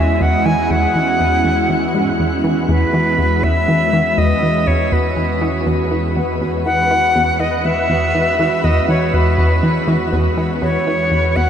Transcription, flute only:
0, 0, Header, 1, 2, 480
1, 0, Start_track
1, 0, Key_signature, 4, "major"
1, 0, Tempo, 495868
1, 685, Time_signature, 4, 2, 24, 8
1, 11129, End_track
2, 0, Start_track
2, 0, Title_t, "Flute"
2, 0, Program_c, 0, 73
2, 0, Note_on_c, 0, 76, 90
2, 212, Note_on_c, 0, 78, 95
2, 226, Note_off_c, 0, 76, 0
2, 444, Note_on_c, 0, 80, 102
2, 458, Note_off_c, 0, 78, 0
2, 687, Note_on_c, 0, 78, 102
2, 701, Note_off_c, 0, 80, 0
2, 2126, Note_off_c, 0, 78, 0
2, 2608, Note_on_c, 0, 71, 93
2, 3327, Note_on_c, 0, 76, 109
2, 3342, Note_off_c, 0, 71, 0
2, 4047, Note_on_c, 0, 75, 100
2, 4062, Note_off_c, 0, 76, 0
2, 4522, Note_on_c, 0, 73, 93
2, 4537, Note_off_c, 0, 75, 0
2, 4767, Note_on_c, 0, 71, 80
2, 4782, Note_off_c, 0, 73, 0
2, 5486, Note_off_c, 0, 71, 0
2, 6442, Note_on_c, 0, 78, 112
2, 7162, Note_on_c, 0, 75, 95
2, 7176, Note_off_c, 0, 78, 0
2, 7404, Note_on_c, 0, 76, 102
2, 7418, Note_off_c, 0, 75, 0
2, 8365, Note_on_c, 0, 75, 95
2, 8379, Note_off_c, 0, 76, 0
2, 8600, Note_off_c, 0, 75, 0
2, 8606, Note_on_c, 0, 73, 83
2, 8849, Note_on_c, 0, 71, 80
2, 8863, Note_off_c, 0, 73, 0
2, 9807, Note_off_c, 0, 71, 0
2, 10284, Note_on_c, 0, 73, 97
2, 11000, Note_on_c, 0, 78, 108
2, 11015, Note_off_c, 0, 73, 0
2, 11129, Note_off_c, 0, 78, 0
2, 11129, End_track
0, 0, End_of_file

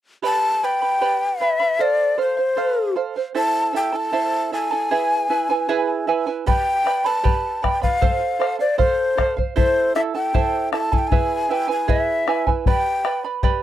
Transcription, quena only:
0, 0, Header, 1, 2, 480
1, 0, Start_track
1, 0, Tempo, 776197
1, 151, Time_signature, 2, 2, 24, 8
1, 8428, End_track
2, 0, Start_track
2, 0, Title_t, "Quena"
2, 0, Program_c, 0, 77
2, 159, Note_on_c, 0, 81, 93
2, 399, Note_on_c, 0, 79, 82
2, 408, Note_off_c, 0, 81, 0
2, 881, Note_on_c, 0, 76, 69
2, 890, Note_off_c, 0, 79, 0
2, 1122, Note_on_c, 0, 74, 81
2, 1131, Note_off_c, 0, 76, 0
2, 1360, Note_off_c, 0, 74, 0
2, 1368, Note_on_c, 0, 72, 63
2, 1820, Note_off_c, 0, 72, 0
2, 2086, Note_on_c, 0, 81, 101
2, 2307, Note_off_c, 0, 81, 0
2, 2327, Note_on_c, 0, 79, 73
2, 2449, Note_on_c, 0, 81, 81
2, 2458, Note_off_c, 0, 79, 0
2, 2802, Note_off_c, 0, 81, 0
2, 2805, Note_on_c, 0, 80, 79
2, 3740, Note_off_c, 0, 80, 0
2, 4003, Note_on_c, 0, 79, 102
2, 4367, Note_on_c, 0, 81, 85
2, 4377, Note_off_c, 0, 79, 0
2, 4725, Note_on_c, 0, 79, 82
2, 4734, Note_off_c, 0, 81, 0
2, 4838, Note_off_c, 0, 79, 0
2, 4842, Note_on_c, 0, 77, 80
2, 5296, Note_off_c, 0, 77, 0
2, 5320, Note_on_c, 0, 74, 68
2, 5432, Note_off_c, 0, 74, 0
2, 5437, Note_on_c, 0, 72, 73
2, 5773, Note_off_c, 0, 72, 0
2, 5918, Note_on_c, 0, 72, 86
2, 6141, Note_off_c, 0, 72, 0
2, 6154, Note_on_c, 0, 76, 75
2, 6191, Note_off_c, 0, 76, 0
2, 6280, Note_on_c, 0, 79, 74
2, 6612, Note_off_c, 0, 79, 0
2, 6639, Note_on_c, 0, 81, 77
2, 6760, Note_on_c, 0, 80, 73
2, 6769, Note_off_c, 0, 81, 0
2, 6793, Note_on_c, 0, 79, 66
2, 6802, Note_off_c, 0, 80, 0
2, 6848, Note_on_c, 0, 80, 84
2, 6858, Note_off_c, 0, 79, 0
2, 7118, Note_on_c, 0, 79, 80
2, 7127, Note_off_c, 0, 80, 0
2, 7235, Note_off_c, 0, 79, 0
2, 7244, Note_on_c, 0, 80, 69
2, 7358, Note_on_c, 0, 75, 73
2, 7367, Note_off_c, 0, 80, 0
2, 7426, Note_off_c, 0, 75, 0
2, 7426, Note_on_c, 0, 76, 73
2, 7713, Note_off_c, 0, 76, 0
2, 7842, Note_on_c, 0, 79, 88
2, 8168, Note_off_c, 0, 79, 0
2, 8428, End_track
0, 0, End_of_file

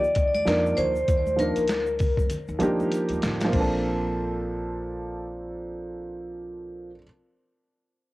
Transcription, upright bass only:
0, 0, Header, 1, 2, 480
1, 0, Start_track
1, 0, Key_signature, -2, "major"
1, 0, Tempo, 612245
1, 849, Time_signature, 4, 2, 24, 8
1, 6379, End_track
2, 0, Start_track
2, 0, Title_t, "Upright bass"
2, 0, Program_c, 0, 32
2, 0, Note_on_c, 0, 38, 86
2, 100, Note_off_c, 0, 38, 0
2, 124, Note_on_c, 0, 39, 95
2, 346, Note_off_c, 0, 39, 0
2, 362, Note_on_c, 0, 41, 101
2, 585, Note_off_c, 0, 41, 0
2, 610, Note_on_c, 0, 38, 82
2, 829, Note_off_c, 0, 38, 0
2, 848, Note_on_c, 0, 39, 107
2, 1198, Note_off_c, 0, 39, 0
2, 1234, Note_on_c, 0, 38, 77
2, 1680, Note_off_c, 0, 38, 0
2, 1711, Note_on_c, 0, 41, 84
2, 1801, Note_off_c, 0, 41, 0
2, 1950, Note_on_c, 0, 39, 85
2, 2041, Note_off_c, 0, 39, 0
2, 2047, Note_on_c, 0, 51, 96
2, 2268, Note_off_c, 0, 51, 0
2, 2431, Note_on_c, 0, 39, 84
2, 2521, Note_off_c, 0, 39, 0
2, 2537, Note_on_c, 0, 33, 83
2, 2753, Note_off_c, 0, 33, 0
2, 2771, Note_on_c, 0, 34, 94
2, 5474, Note_off_c, 0, 34, 0
2, 6379, End_track
0, 0, End_of_file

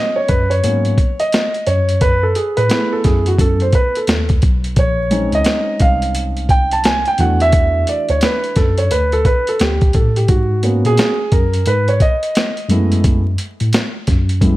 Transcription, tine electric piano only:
0, 0, Header, 1, 2, 480
1, 0, Start_track
1, 0, Tempo, 689655
1, 1401, Time_signature, 4, 2, 24, 8
1, 10139, End_track
2, 0, Start_track
2, 0, Title_t, "Tine electric piano"
2, 0, Program_c, 0, 4
2, 203, Note_on_c, 0, 42, 86
2, 420, Note_off_c, 0, 42, 0
2, 443, Note_on_c, 0, 44, 81
2, 660, Note_off_c, 0, 44, 0
2, 1161, Note_on_c, 0, 42, 86
2, 1613, Note_off_c, 0, 42, 0
2, 1794, Note_on_c, 0, 45, 77
2, 1873, Note_off_c, 0, 45, 0
2, 2122, Note_on_c, 0, 42, 83
2, 2339, Note_off_c, 0, 42, 0
2, 2353, Note_on_c, 0, 42, 84
2, 2575, Note_off_c, 0, 42, 0
2, 2839, Note_on_c, 0, 39, 80
2, 3080, Note_off_c, 0, 39, 0
2, 3081, Note_on_c, 0, 35, 84
2, 3299, Note_off_c, 0, 35, 0
2, 3315, Note_on_c, 0, 34, 104
2, 3682, Note_off_c, 0, 34, 0
2, 3706, Note_on_c, 0, 37, 90
2, 3789, Note_off_c, 0, 37, 0
2, 4041, Note_on_c, 0, 36, 85
2, 4885, Note_off_c, 0, 36, 0
2, 5002, Note_on_c, 0, 40, 88
2, 5454, Note_off_c, 0, 40, 0
2, 5634, Note_on_c, 0, 38, 83
2, 5713, Note_off_c, 0, 38, 0
2, 5961, Note_on_c, 0, 42, 91
2, 6179, Note_off_c, 0, 42, 0
2, 6205, Note_on_c, 0, 38, 89
2, 6421, Note_off_c, 0, 38, 0
2, 6683, Note_on_c, 0, 38, 80
2, 6900, Note_off_c, 0, 38, 0
2, 6923, Note_on_c, 0, 45, 82
2, 7140, Note_off_c, 0, 45, 0
2, 7158, Note_on_c, 0, 44, 99
2, 7524, Note_off_c, 0, 44, 0
2, 7552, Note_on_c, 0, 46, 92
2, 7632, Note_off_c, 0, 46, 0
2, 7878, Note_on_c, 0, 42, 94
2, 8097, Note_off_c, 0, 42, 0
2, 8118, Note_on_c, 0, 44, 92
2, 8337, Note_off_c, 0, 44, 0
2, 8832, Note_on_c, 0, 42, 97
2, 9289, Note_off_c, 0, 42, 0
2, 9472, Note_on_c, 0, 45, 87
2, 9552, Note_off_c, 0, 45, 0
2, 9796, Note_on_c, 0, 42, 94
2, 10016, Note_off_c, 0, 42, 0
2, 10030, Note_on_c, 0, 42, 93
2, 10139, Note_off_c, 0, 42, 0
2, 10139, End_track
0, 0, End_of_file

